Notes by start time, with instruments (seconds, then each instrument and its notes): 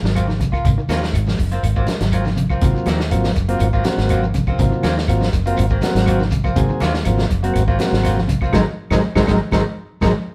0.03 fingered electric bass G#1, clean electric guitar F#3, snare, shekere
0.15 clean electric guitar F#3 A#3 C4 F4, closed hi-hat, claves, shekere
0.28 clean electric guitar D#3, muted clean electric guitar stroke, snare, high conga, shekere
0.40 clean electric guitar C3, muted clean electric guitar stroke, kick, closed hi-hat, high conga, shekere
0.52 clean electric guitar A#3 F4, kick, claves, shekere
0.65 fingered electric bass G#1, clean electric guitar C3, kick, closed hi-hat, shekere
0.78 clean electric guitar D#3, muted clean electric guitar stroke, shekere
0.89 fingered electric bass D#2, clean electric guitar F3 F#3 A#3 C4 F4, snare, closed hi-hat, high conga, claves, shekere
1.03 muted clean electric guitar stroke, snare, shekere
1.13 fingered electric bass G#1, closed hi-hat, claves, shekere
1.27 muted clean electric guitar stroke, snare, high conga, shekere
1.38 fingered electric bass F#1, muted clean electric guitar stroke, kick, open hi-hat, shekere
1.51 clean electric guitar A#3 C4 F4, closed hi-hat, shekere
1.63 fingered electric bass G#1, muted clean electric guitar stroke, closed hi-hat, claves, shekere
1.75 clean electric guitar F#3 A#3 C4 F4, kick, shekere
1.87 muted clean electric guitar stroke, snare, closed hi-hat, high conga, shekere
2.00 fingered electric bass G#1, clean electric guitar F#3, snare, closed hi-hat, shekere
2.11 clean electric guitar F#3 A#3 C4 F4, closed hi-hat, claves, shekere
2.25 clean electric guitar D#3, muted clean electric guitar stroke, snare, high conga, shekere
2.36 clean electric guitar C3, muted clean electric guitar stroke, closed hi-hat, high conga, shekere
2.50 clean electric guitar A#3 C4 F4, kick, claves, shekere
2.61 fingered electric bass G#1, clean electric guitar C3, transistor combo organ F#3 A#3 C4 F4, kick, closed hi-hat, shekere
2.75 muted clean electric guitar stroke, shekere
2.86 fingered electric bass D#2, clean electric guitar F3 F#3 A#3 C4, muted clean electric guitar stroke, snare, closed hi-hat, high conga, claves, shekere
3.00 muted clean electric guitar stroke, snare, shekere
3.10 fingered electric bass G#1, transistor combo organ F#3 A#3 C4 F4, closed hi-hat, high conga, claves, shekere
3.24 muted clean electric guitar stroke, snare, high conga, shekere
3.35 fingered electric bass F#1, muted clean electric guitar stroke, kick, closed hi-hat, shekere
3.48 transistor combo organ F#3 A#3 C4 F4, clean electric guitar A#3 C4 F4, closed hi-hat, shekere
3.60 fingered electric bass G#1, muted clean electric guitar stroke, closed hi-hat, claves, shekere
3.73 clean electric guitar F#3 A#3 C4 F4, kick, shekere
3.84 transistor combo organ F#3 A#3 C4 F#4, muted clean electric guitar stroke, snare, closed hi-hat, high conga, shekere
3.97 fingered electric bass G#1, snare, shekere
4.09 clean electric guitar F#3 A#3 C4 F4, closed hi-hat, claves, shekere
4.22 muted clean electric guitar stroke, high conga, shekere
4.34 clean electric guitar C3, muted clean electric guitar stroke, kick, closed hi-hat, high conga, shekere
4.47 clean electric guitar A#3 C4 F4, kick, high conga, claves, shekere
4.59 fingered electric bass G#1, clean electric guitar C3, transistor combo organ F#3 A#3 C4 F4, kick, closed hi-hat, shekere
4.71 clean electric guitar D#3, muted clean electric guitar stroke, shekere
4.83 fingered electric bass D#2, clean electric guitar F3 F#3 A#3 C4 F4, snare, closed hi-hat, high conga, claves, shekere
4.97 muted clean electric guitar stroke, snare, shekere
5.08 fingered electric bass G#1, transistor combo organ F#3 A#3 C4 F4, closed hi-hat, claves, shekere
5.20 muted clean electric guitar stroke, snare, high conga, shekere
5.33 fingered electric bass F#1, muted clean electric guitar stroke, kick, closed hi-hat, shekere
5.45 transistor combo organ F#3 A#3 C4 F4, clean electric guitar A#3 C4 F4, closed hi-hat, shekere
5.57 fingered electric bass G#1, muted clean electric guitar stroke, closed hi-hat, claves, shekere
5.69 clean electric guitar F#3 A#3 C4, kick, shekere
5.82 transistor combo organ F#3 A#3 C4 F#4, muted clean electric guitar stroke, snare, closed hi-hat, high conga, shekere
5.95 fingered electric bass G#1, clean electric guitar F#3, snare, closed hi-hat, shekere
6.06 clean electric guitar F#3 A#3 C4 F4, closed hi-hat, claves, shekere
6.18 clean electric guitar D#3, muted clean electric guitar stroke, snare, high conga, shekere
6.31 clean electric guitar C3, muted clean electric guitar stroke, kick, closed hi-hat, high conga, shekere
6.44 clean electric guitar A#3 C4 F4, kick, high conga, claves, shekere
6.56 fingered electric bass G#1, clean electric guitar C3, transistor combo organ F#3 A#3 C4 G#4, kick, closed hi-hat, shekere
6.69 clean electric guitar D#3, muted clean electric guitar stroke, shekere
6.80 fingered electric bass D#2, clean electric guitar F#3 A#3 C4 F4, snare, closed hi-hat, high conga, claves, shekere
6.94 muted clean electric guitar stroke, snare, shekere
7.05 fingered electric bass G#1, transistor combo organ F#3 A#3 C4 F4, closed hi-hat, high conga, claves, shekere
7.18 muted clean electric guitar stroke, snare, high conga, shekere
7.30 fingered electric bass F#1, muted clean electric guitar stroke, kick, closed hi-hat, shekere
7.43 transistor combo organ F#3 A#3 C4 F#4, clean electric guitar A#3 C4, muted clean electric guitar stroke, closed hi-hat, shekere
7.54 fingered electric bass G#1, muted clean electric guitar stroke, closed hi-hat, claves, shekere
7.68 clean electric guitar F#3 A#3 C4 F4, kick, shekere
7.79 transistor combo organ F#3 A#3 C4 F#4, muted clean electric guitar stroke, snare, closed hi-hat, high conga, shekere
7.91 fingered electric bass G#1, clean electric guitar F#3, snare, shekere
8.04 clean electric guitar F#3 A#3 C4 F4, snare, closed hi-hat, claves, shekere
8.17 muted clean electric guitar stroke, snare, high conga, shekere
8.27 clean electric guitar C3, muted clean electric guitar stroke, kick, closed hi-hat, high conga, shekere
8.41 clean electric guitar A#3 C4 F4, kick, claves, shekere
8.53 fingered electric bass G#1, clean electric guitar D#3 F#3 G#3 C4 D#4, transistor combo organ G#3 C4 D#4, kick, snare, high conga, claves, shekere
8.91 fingered electric bass G#1, clean electric guitar D#3 F#3 G#3 C4 D#4, transistor combo organ G#3 C4 D#4, kick, snare, high conga, claves, shekere
9.15 fingered electric bass G#1, clean electric guitar D#3 F#3 G#3 C4 D#4, transistor combo organ G#3 C4 D#4, kick, snare, high conga, claves, shekere
9.27 fingered electric bass G#1, clean electric guitar D#3 F#3 G#3 C4 D#4, transistor combo organ G#3 C4 D#4, kick, snare, high conga, claves, shekere
9.52 fingered electric bass G#1, clean electric guitar D#3 F#3 G#3 C4 D#4, transistor combo organ G#3 C4 D#4, kick, snare, high conga, claves, shekere
10.01 fingered electric bass G#1, clean electric guitar D#3 F#3 G#3 C4 D#4, transistor combo organ G#3 C4 D#4, kick, snare, high conga, claves, shekere